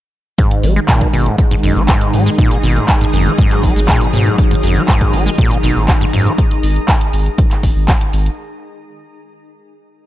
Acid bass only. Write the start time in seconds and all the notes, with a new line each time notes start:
0.38 G#2
0.63 G#3
0.76 G#3
0.88 A#2
1.01 B2
1.13 B2
1.26 G#2
1.51 G#2
1.63 F#2
1.76 G#3
1.88 G#2
2.13 G#3
2.26 G#3
2.38 A#2
2.51 B2
2.63 B2
2.76 G#2
3.01 G#2
3.13 F#2
3.26 G#3
3.38 G#2
3.63 G#3
3.76 G#3
3.88 A#2
4.01 B2
4.13 B2
4.26 G#2
4.51 G#2
4.63 F#2
4.76 G#3
4.88 G#2
5.13 G#3
5.26 G#3
5.38 A#2
5.51 B2
5.63 B2
5.76 G#2
6.01 G#2
6.13 F#2
6.26 G#3